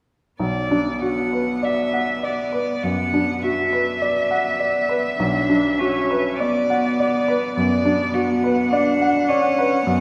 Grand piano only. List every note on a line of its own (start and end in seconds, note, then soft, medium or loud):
0.40 2.78 B1 soft
0.71 1.21 D4 soft
1.02 1.51 F#4 soft
1.33 1.81 B4 soft
1.63 2.11 D5 soft
1.94 2.41 F#5 soft
2.23 2.71 D5 soft
2.53 3.00 B4 soft
2.83 3.31 F#2 soft
3.14 3.60 D4 soft
3.43 3.90 F#4 soft
3.73 4.19 B4 soft
4.02 4.48 D5 soft
4.31 4.77 F#5 soft
4.60 5.07 D5 soft
4.89 5.37 B4 soft
5.20 7.52 B1 soft
5.49 5.97 D4 soft
5.80 6.28 F#4 soft
6.11 6.58 B4 soft
6.40 6.87 D5 soft
6.70 7.16 F#5 soft
7.00 7.45 D5 soft
7.28 7.74 B4 soft
7.57 8.03 F#2 soft
7.85 8.31 D4 soft
8.14 8.61 F#4 soft
8.44 8.90 B4 soft
8.73 9.18 D5 soft
9.01 9.47 F#5 soft
9.30 9.74 D5 soft
9.59 9.86 B4 soft
9.87 10.00 F#2 soft